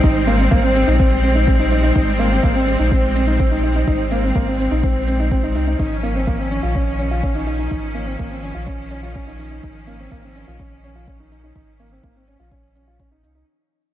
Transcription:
Already playing: G3 G#3 C4
0.04 G#1 D#4, kick
0.27 A#3, shaker
0.39 C4
0.51 G#1 A#3, kick
0.63 C4
0.75 C4, shaker
0.88 A#1 D#4
0.99 C4, kick
1.23 C4, shaker
1.35 D#4
1.47 C4, kick
1.59 D#4
1.71 D#4, shaker
1.83 D#4
1.95 G#1 D#4, kick
2.19 A#3, shaker
2.31 C4
2.43 G#1 A#3, kick
2.55 C4
2.67 C4, shaker
2.79 A#1 D#4
2.92 C4, kick
3.16 C4, shaker
3.27 D#4
3.40 C4, kick
3.52 D#4
3.63 D#4, shaker
3.76 D#4
3.88 G#1 D#4, kick
4.11 A#3, shaker
4.24 C4
4.36 G#1 A#3, kick
4.47 C4
4.59 C4, shaker
4.71 A#1 D#4
4.84 C4, kick
5.07 C4, shaker
5.20 D#4
5.32 C4, kick
5.43 D#4
5.55 C2 D#4, shaker
5.67 D#4
5.79 G#1 D#3 F3 C#4 D#4, kick
6.03 A#3, shaker
6.15 C4
6.27 A#3, kick
6.39 C4
6.51 C#4, shaker
6.63 A#1 F4
6.75 C#4, kick
6.99 C#4, shaker
7.11 F4
7.23 C#4, kick
7.35 D#4
7.47 D#4, shaker
7.59 D#4
7.71 G#1 D#4, kick
7.95 A#3, shaker
8.07 C4
8.19 G#1 A#3, kick
8.31 C4
8.43 C#4, shaker
8.55 A#1 F4
8.67 C#4, kick
8.91 C#4, shaker
9.03 F4
9.15 C#4, kick
9.27 D#4
9.39 D#4, shaker
9.51 D#4
9.63 G#1 D#4, kick
9.87 A#3, shaker
9.99 C4
10.12 G#1 A#3, kick
10.24 C4
10.36 C#4, shaker
10.48 A#1 F4
10.60 C#4, kick
10.84 C#4, shaker
10.96 F4
11.08 C#4, kick
11.20 D#4
11.31 D#4, shaker
11.44 D#4
11.56 G#1 D#4, kick
11.79 A#3, shaker
11.92 C4
12.04 G#1 A#3, kick
12.16 C4
12.27 C#4, shaker
12.40 A#1 F4
12.52 C#4, kick
12.75 C#4, shaker
12.88 F4
12.99 C#4, kick
13.12 D#4
13.23 C2 D#4, shaker
13.35 D#4

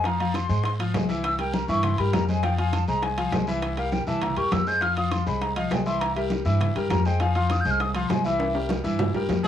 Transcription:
Already playing: F2
0.04 F3 F4 F5 A#5, high bongo, high conga, high timbale, long guiro
0.20 F3 F4 F5, high conga, high timbale
0.34 C6, high bongo, high conga, high timbale, low timbale, short guiro
0.49 G#2 G#3 G#4 C5, high conga, short guiro
0.64 C6, high bongo, high conga, high timbale, long guiro
0.79 F3 F4 F5, high conga, high timbale
0.94 C2 G#3 G#4 C5, high bongo, low bongo, high conga, high timbale, low timbale, short guiro
1.09 E3 E4 E5, high conga, short guiro
1.24 E6, high bongo, high conga, high timbale, long guiro
1.38 G3 G4 A#4 G5, high bongo, high conga, high timbale
1.54 A#5, high bongo, high conga, low timbale, short guiro
1.68 G2 E3 E4 E5 C#6, high bongo, high conga, short guiro
1.83 C6, high bongo, high conga, low conga, high timbale, long guiro
1.98 G2 G3 G4 A#4 B5, high conga, high timbale
2.13 F2 A#5, high bongo, low bongo, high conga, high timbale, low timbale, short guiro
2.28 G#3 G#4 C5 G#5, high bongo, high conga, short guiro
2.43 F3 F4 F5 G5, high bongo, high conga, high timbale, long guiro
2.58 F3 F4 F5 G#5, high conga, high timbale
2.72 A5, high bongo, high conga, high timbale, low timbale, short guiro
2.88 C2 G#3 G#4 C5 A#5, high conga, short guiro
3.02 G#5, high bongo, high conga, high timbale, long guiro
3.18 F3 F4 F5, high conga, high timbale
3.32 C2 G#3 G#4 C5, high bongo, low bongo, high conga, high timbale, low timbale, short guiro
3.47 E3 E4 E5, high conga, short guiro
3.62 high bongo, high conga, high timbale, long guiro
3.77 G3 G4 A#4 F5, high bongo, high conga, high timbale
3.92 G5, high bongo, high conga, low timbale, short guiro
4.07 C2 E3 E4 E5 A5, high bongo, high conga, short guiro
4.21 A#5, high bongo, high conga, low conga, high timbale, long guiro
4.36 E2 G3 G4 A#4 C#6, high conga, high timbale
4.52 F2 E6, high bongo, low bongo, high conga, high timbale, low timbale, short guiro
4.67 G#3 G#4 C5 G6, high bongo, short guiro
4.81 F3 F4 F5 F6, high bongo, high conga, high timbale, long guiro
4.97 F3 F4 F5 D#6, high conga, high timbale
5.11 C6, high bongo, high conga, high timbale, low timbale, short guiro
5.26 C2 G#3 G#4 C5 B5, high conga, short guiro
5.41 A#5, high bongo, high conga, high timbale, long guiro
5.56 F3 F4 D#5 F5, high conga, high timbale
5.71 C2 G#3 G#4 C5 G5, high bongo, low bongo, high conga, high timbale, low timbale, short guiro
5.85 E3 E4 E5 C6, high conga, short guiro
6.00 A#5, high bongo, high conga, high timbale, long guiro
6.15 G3 G4 A#4 E5, high bongo, high conga, high timbale
6.30 high bongo, high conga, low timbale, short guiro
6.45 G2 E3 E4 E5, high bongo, high conga, short guiro
6.60 high bongo, high conga, low conga, high timbale, long guiro
6.75 G2 G3 G4 A#4, high conga, high timbale
6.90 F2 A#5, high bongo, low bongo, high conga, high timbale, low timbale, short guiro
7.05 G#3 G#4 C5 G5, high bongo, short guiro
7.20 F3 F4 F5 G#5, high bongo, high conga, high timbale, long guiro
7.35 F3 F4 F5 C6, high conga, high timbale
7.50 D#6, high bongo, high conga, high timbale, low timbale, short guiro
7.61 G6
7.65 C2 G#3 G#4 C5, high conga, short guiro
7.71 F6
7.80 D#6, high bongo, high conga, high timbale, long guiro
7.95 F3 F4 F5 C6, high conga, high timbale
8.09 C2 G#3 G#4 C5 G#5, high bongo, low bongo, high conga, high timbale, low timbale, short guiro
8.24 E3 E4 E5, high conga, short guiro
8.40 high bongo, high conga, high timbale, long guiro
8.54 G3 G4 A#4, high bongo, high conga, high timbale
8.69 high bongo, high conga, low timbale, short guiro
8.84 G2 E3 E4 E5, high conga, short guiro
8.99 high bongo, high conga, low conga, low timbale, long guiro
9.14 G2 G3 G4 A#4, high conga, low timbale
9.29 F2, low bongo, high conga, low timbale, short guiro
9.44 G#3 G#4, low bongo, high conga, low timbale, short guiro

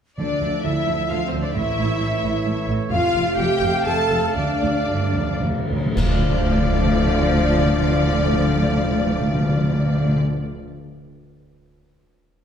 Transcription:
0.18 D2 D3 F3 A3 D4 D5 E5
0.41 D2 D3
0.62 D2 D3 E4 E5
0.66 E5
0.87 D2 D3
1.09 D2 D3 F4 F5
1.25 C4 C5
1.29 C5
1.33 D2 D3
1.40 D4 D5
1.45 D4
1.54 A1 A2 E3 E4 C#5 E5
1.78 A1 A2
2.00 A1 A2
2.24 A1 A2
2.46 A1 A2
2.69 A1 A2
2.90 F1 F2 F4 F5
2.94 C3 A3
3.14 F1 F2
3.38 F1 F2 G4 G5
3.61 F1 F2
3.85 F1 F2 A4 A5
4.10 F1 F2
4.35 D2 D3 D4 D5
4.53 D3
4.61 D2 D3
4.78 D3
4.87 D2 G2 D3
4.95 D3
5.03 D3
5.13 D2 F2 D3
5.21 D3
5.31 D3
5.39 D2 E2 D3
5.48 D3
5.58 D3
5.67 D2 D3
5.77 D3
5.86 D3
5.96 D2 D3 F3 A3 D4 D5 F5, concert bass drum, crash
6.06 D3
6.13 D3
6.21 D3
6.28 D3
6.35 D3
6.42 D3
6.49 D3
6.57 D3
6.64 D3
6.72 D3
6.78 D3
6.85 D3
6.92 D3
7.00 D3
7.07 D3
7.13 D3
7.21 D3
7.28 D3
7.35 D3
7.43 D3
7.50 D3
7.57 D3
7.65 D3
7.72 D3
7.80 D3
7.87 D3
7.94 D3
8.02 D3
8.18 D3
8.25 D3
8.33 D3
8.40 D3
8.48 D3
8.55 D3
8.62 D3
8.70 D3
8.77 D3
8.84 D3
8.92 D3
8.99 D3
9.07 D3
9.13 D3
9.20 D3
9.27 D3
9.35 D3
9.42 D3
9.49 D3
9.56 D3
9.64 D3
9.71 D3
9.78 D3
9.86 D3
9.93 D3
10.00 D3
10.08 D3
10.15 D3

